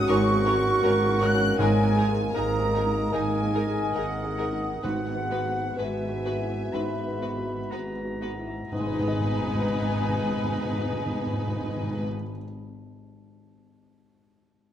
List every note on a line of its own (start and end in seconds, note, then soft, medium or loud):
0.00 0.09 G#2 medium
0.00 0.26 A#3 medium
0.00 0.32 A#3 medium
0.00 4.67 A#3 medium
0.00 0.24 C#4 medium
0.00 0.45 C#4 medium
0.00 0.58 F#4 medium
0.00 0.64 F#4 soft
0.00 1.55 F#4 medium
0.00 0.83 A#4 medium
0.00 0.84 A#4 medium
0.00 1.01 C#5 medium
0.00 1.20 F#5 medium
0.08 0.74 G#1 medium
0.08 1.54 G#2 medium
0.08 1.57 G#2 medium
0.08 0.75 G#2 medium
0.08 0.17 C#4 medium
0.08 0.18 F#4 medium
0.08 0.16 A#4 medium
0.08 1.56 A#4 medium
0.08 1.42 F#5 medium
0.08 1.21 C#6 medium
0.27 1.77 A#3 medium
0.32 0.73 A#3 soft
0.45 0.54 C#4 medium
0.45 1.61 C#4 soft
0.45 0.55 F#4 medium
0.45 0.53 A#4 medium
0.58 0.98 F#4 soft
0.65 1.61 F#4 soft
0.83 1.49 G#1 medium
0.83 1.50 G#2 medium
0.83 0.92 C#4 medium
0.83 0.91 F#4 medium
0.83 0.91 A#4 soft
0.83 1.23 A#4 soft
0.83 2.33 A#4 medium
1.03 1.39 C#5 medium
1.09 1.49 F#4 medium
1.21 1.30 C#4 medium
1.21 1.31 F#4 medium
1.21 1.29 A#4 medium
1.21 1.62 F#5 medium
1.21 1.59 F#6 medium
1.21 1.59 F#6 loud
1.35 1.59 C#4 soft
1.40 1.61 C#5 medium
1.58 2.25 G#1 medium
1.58 2.25 G#2 medium
1.58 4.83 G#2 medium
1.58 3.09 G#2 medium
1.58 2.70 G#2 medium
1.58 4.67 D#4 medium
1.58 1.67 D#4 medium
1.58 1.66 G#4 medium
1.58 2.07 A#4 medium
1.58 1.68 A#4 medium
1.58 2.07 D#5 medium
1.58 2.32 G#5 medium
1.58 2.12 G#5 medium
1.78 3.33 A#3 soft
1.84 2.24 A#3 soft
1.96 2.04 D#4 soft
1.96 3.53 D#4 soft
1.96 2.04 G#4 soft
1.96 2.06 A#4 soft
2.09 2.50 G#4 soft
2.15 3.73 G#4 soft
2.33 3.04 G#1 medium
2.33 3.04 G#2 medium
2.33 2.44 D#4 soft
2.33 2.44 G#4 medium
2.33 2.76 A#4 soft
2.33 3.09 A#4 medium
2.33 3.93 A#4 soft
2.33 2.43 A#4 soft
2.33 3.10 D#5 medium
2.33 3.13 A#5 medium
2.33 3.12 A#5 medium
2.54 2.92 D#5 soft
2.59 3.02 G#4 soft
2.73 2.83 D#4 soft
2.73 2.83 G#4 soft
2.73 2.82 A#4 soft
2.73 4.37 G#5 soft
2.86 3.29 D#4 soft
2.93 4.15 D#5 soft
3.12 3.85 G#1 medium
3.12 3.85 G#2 medium
3.12 3.56 D#3 soft
3.12 4.87 D#3 soft
3.12 3.21 D#4 soft
3.12 3.21 G#4 soft
3.12 4.79 A#4 medium
3.12 3.21 A#4 soft
3.12 4.80 D#5 medium
3.12 3.95 G#5 medium
3.12 3.96 G#5 medium
3.34 4.87 A#3 soft
3.40 3.84 A#3 soft
3.54 4.87 D#4 soft
3.54 3.62 D#4 soft
3.54 3.62 G#4 soft
3.54 3.62 A#4 soft
3.67 4.12 G#4 soft
3.74 7.64 G#4 soft
3.94 4.73 G#1 soft
3.94 4.72 G#2 soft
3.94 4.05 D#4 soft
3.94 4.05 G#4 soft
3.94 4.02 A#4 soft
3.94 4.87 A#4 soft
3.94 4.41 A#4 soft
3.94 4.81 F#5 medium
4.16 4.60 D#5 soft
4.24 4.71 G#4 soft
4.38 4.46 D#4 soft
4.38 4.46 G#4 soft
4.38 4.47 A#4 soft
4.38 8.28 G#5 soft
4.52 4.83 D#4 soft
4.61 4.87 D#5 soft
4.82 5.66 G#1 soft
4.82 6.69 G#2 soft
4.82 5.66 G#2 soft
4.82 6.21 G#2 medium
4.82 6.72 G#2 soft
4.82 8.25 B3 medium
4.82 4.92 B3 soft
4.82 8.25 F#4 soft
4.82 4.92 F#4 soft
4.82 4.90 B4 soft
4.82 5.75 B4 soft
4.82 5.75 F#5 medium
4.82 5.75 F#5 soft
5.07 6.97 B3 soft
5.15 5.65 B3 soft
5.31 5.39 B3 soft
5.31 7.21 E4 soft
5.31 5.39 F#4 soft
5.31 5.39 B4 soft
5.45 5.96 F#4 soft
5.54 7.46 F#4 soft
5.76 6.62 G#1 soft
5.76 6.62 G#2 soft
5.76 5.86 B3 soft
5.76 5.86 F#4 soft
5.76 8.24 B4 soft
5.76 6.28 B4 soft
5.76 7.70 B4 soft
5.76 5.86 B4 soft
5.76 7.72 E5 soft
5.76 6.75 G#5 soft
6.01 6.48 E5 soft
6.09 6.60 F#4 soft
6.25 6.33 B3 soft
6.25 6.33 F#4 soft
6.25 6.33 B4 soft
6.25 8.20 F#5 soft
6.41 6.93 E4 soft
6.49 7.95 E5 soft
6.73 7.60 G#1 soft
6.73 8.70 G#2 soft
6.73 7.60 G#2 soft
6.73 8.68 G#2 soft
6.73 6.82 B3 soft
6.73 6.81 F#4 soft
6.73 6.81 B4 soft
6.73 7.73 B5 soft
6.98 8.84 B3 soft
7.07 7.59 B3 soft
7.21 7.30 B3 soft
7.21 8.76 E4 soft
7.21 7.29 F#4 soft
7.21 7.30 B4 soft
7.38 7.91 F#4 soft
7.47 8.76 F#4 soft
7.71 8.60 G#1 soft
7.71 8.60 G#2 soft
7.71 7.79 B3 soft
7.71 7.79 F#4 soft
7.71 11.61 B4 soft
7.71 7.79 B4 soft
7.71 8.25 B4 soft
7.71 8.71 A#5 soft
7.96 8.46 E5 soft
8.05 8.59 F#4 soft
8.21 8.30 B3 soft
8.21 8.30 F#4 soft
8.21 8.30 B4 soft
8.21 8.75 F#5 soft
8.39 8.72 E4 soft
8.47 8.75 E5 soft
8.70 12.06 G#1 soft
8.70 12.05 G#2 medium
8.70 12.62 G#2 soft
8.70 8.79 G#2 medium
8.70 12.07 G#2 soft
8.70 12.06 B3 soft
8.70 12.06 D#4 soft
8.70 12.06 B4 soft
8.70 12.06 B4 medium
8.70 12.08 D#5 medium
8.70 12.05 G#5 soft
8.70 12.07 G#5 medium
8.79 8.86 G#2 soft
8.79 12.23 G#3 soft
8.79 12.14 G#3 soft
8.86 8.92 G#2 soft
8.86 12.20 B3 soft
8.86 12.21 B3 soft
8.92 8.99 G#2 medium
8.92 12.27 D#4 soft
8.92 12.29 D#4 soft
8.99 9.06 G#2 medium
8.99 12.34 G#4 soft
8.99 12.35 G#4 soft
9.06 9.13 G#2 soft
9.06 12.41 D#5 soft
9.06 12.43 D#5 soft
9.13 9.20 G#2 medium
9.20 9.26 G#2 medium
9.26 9.33 G#2 medium
9.34 9.40 G#2 soft
9.41 9.47 G#2 medium
9.47 9.54 G#2 medium
9.54 9.61 G#2 medium
9.61 9.68 G#2 soft
9.69 9.75 G#2 medium
9.75 9.82 G#2 medium
9.82 9.89 G#2 medium
9.89 9.95 G#2 soft
9.95 10.02 G#2 medium
10.02 10.09 G#2 soft
10.09 10.16 G#2 medium
10.16 10.23 G#2 soft
10.23 10.30 G#2 medium
10.30 10.37 G#2 medium
10.37 10.44 G#2 medium
10.44 10.51 G#2 medium
10.51 10.58 G#2 medium
10.58 10.64 G#2 medium
10.65 10.72 G#2 medium
10.72 10.79 G#2 medium
10.79 10.85 G#2 medium
10.85 10.92 G#2 soft
10.93 10.99 G#2 medium
10.99 11.06 G#2 soft
11.06 11.13 G#2 medium
11.13 11.20 G#2 medium
11.20 11.26 G#2 medium
11.26 11.33 G#2 medium
11.33 11.40 G#2 medium
11.40 11.47 G#2 soft
11.47 11.54 G#2 medium
11.54 11.61 G#2 medium
11.61 11.68 G#2 medium
11.68 11.75 G#2 soft
11.76 11.82 G#2 medium
11.83 11.89 G#2 soft
11.90 11.96 G#2 medium
11.96 12.03 G#2 medium
12.03 12.10 G#2 medium